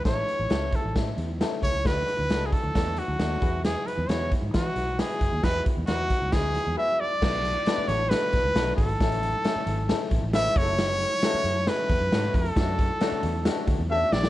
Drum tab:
CC |----------------|----------------|----------------|----------------|
HH |x-x-x-x-x-x-x-x-|x-x-x-x-x-x-x-x-|x-x-x-x-x-x-xxx-|x-x-x-x-x-x-----|
SD |o---o---o---o---|o---o---o---o---|o---o---o-o-o---|o---o---o-o-----|
BD |o-----o-o-----o-|o-----o-o-----o-|------o-o-----o-|o-o---o-o-------|

CC |x---------------|----------------|----------------|----------------|
HH |--x-x-x-x-x-x-xx|xxx-x-x-x-x-x-xx|x-x-x-x-x-x-x-xx|x-x-x-x-x-x-----|
SD |o---o---o-o-o---|o---o---o---o---|o---o---o-o-o---|o---o---o-----oo|
BD |o---------o---o-|o---------o---o-|----------o---o-|o-o-------o-----|